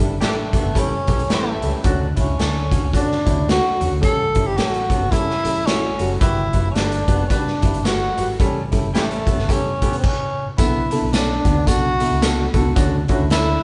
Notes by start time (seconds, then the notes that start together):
0.00 G1 G3 D4 E4 A4
0.20 A1 E3 G3 A3 D4 G4 A4, snare, closed hi-hat
0.53 G3 B3 D4 A4, kick, closed hi-hat
0.64 G1
0.74 A1 E3 G3 C#4 G4 A4, kick, closed hi-hat
0.79 C#4
0.92 muted fingered electric bass stroke
1.07 B1 E3 G3 C#4 G4 A4, kick, closed hi-hat
1.19 closed hi-hat
1.29 A1 E3 G3 C#4 E4 G4 A4, snare, closed hi-hat
1.35 A3
1.62 C#2 G3 C#4 E4 A4, closed hi-hat
1.84 D2 D3 C#4 D4 F#4, kick, closed hi-hat
2.16 C#2 D3 C#4 E4 F#4, kick, closed hi-hat
2.38 D2 D3 C#4 D4 A4, snare, closed hi-hat
2.71 D3 C#4 F#4, kick, closed hi-hat
2.83 C#2
2.93 D3 C#4 D4 F#4, kick, closed hi-hat
3.10 muted fingered electric bass stroke, snare
3.26 D2 D3 C#4 E4 F#4, kick, closed hi-hat
3.48 D3 C#4 F#4, snare, closed hi-hat
3.81 E2 D3 C#4 F#4, closed hi-hat
3.91 D2
4.01 A1 G3 C#4 A4, kick, closed hi-hat
4.34 G1 G3 C#4 E4 A4, kick, closed hi-hat
4.47 G4
4.57 A1 G3 C#4 G4 A4, snare, closed hi-hat
4.68 F#4
4.74 closed hi-hat
4.90 G3 B3 C#4 A4, kick, closed hi-hat
5.01 G1
5.11 G3 C#4 E4 A4, kick, closed hi-hat
5.28 muted fingered electric bass stroke, snare
5.44 A1 G3 C#4 E4 A4, closed hi-hat
5.65 G3 C#4 E4 F#4, snare, closed hi-hat
5.98 F#1 G3 C#4 F#4 A4, closed hi-hat
6.20 G1 G3 E4 F#4 G4 B4, kick, closed hi-hat
6.53 F#1 G3 E4 F#4 B4, kick, closed hi-hat
6.71 C#4 D4
6.75 G1 G3 F#4 B4, snare, closed hi-hat
6.92 closed hi-hat
7.08 F#1 G3 B3 F#4 B4, kick, closed hi-hat
7.27 C#4 D4 F#4, kick, closed hi-hat
7.31 G3 D4 B4
7.47 muted fingered electric bass stroke, snare
7.62 G1 G3 E4 F#4 B4, kick, closed hi-hat
7.74 closed hi-hat
7.84 G3 F#4 B4, snare, closed hi-hat
8.17 G#1 G3 F#4 B4, closed hi-hat
8.39 A1 G3 C#4 A4, kick, closed hi-hat
8.72 G1 G3 C#4 E4 A4, kick, closed hi-hat
8.94 E3 G3 A3 C#4 G4 B4, snare, closed hi-hat
9.11 closed hi-hat
9.26 G3 B3 C#4 A4, kick, closed hi-hat
9.37 G1, snare
9.48 E3 G3 C#4 G4 A4, kick, closed hi-hat
9.66 muted fingered electric bass stroke
9.81 A1 E3 G3 B3 C#4 G4 A4, kick, closed hi-hat
9.93 closed hi-hat
9.99 C4
10.04 C#4, kick, crash
10.58 B1 D3 B3 E4 A4, kick, closed hi-hat, tambourine
10.91 D3 B3 E4 A4, closed hi-hat
11.01 B1
11.07 E4
11.13 D3 B3 C#4 D4, snare, closed hi-hat, tambourine
11.45 D2 D3 B3 D4, kick, closed hi-hat
11.67 B1 D3 B3 D4 F#4 A4, kick, closed hi-hat, tambourine
12.00 D3 B3 E4 A4, closed hi-hat
12.11 C#2
12.21 D3 B3 F#4 A4, snare, closed hi-hat, tambourine
12.54 C#2 D3 B3 F#4 A4, kick, closed hi-hat
12.76 D2 D3 C#4 D4 F#4, kick, closed hi-hat, tambourine
13.08 D3 C#4 E4 F#4, kick, closed hi-hat
13.20 D2
13.30 D3 C#4 D4 E4 A4, snare, closed hi-hat, tambourine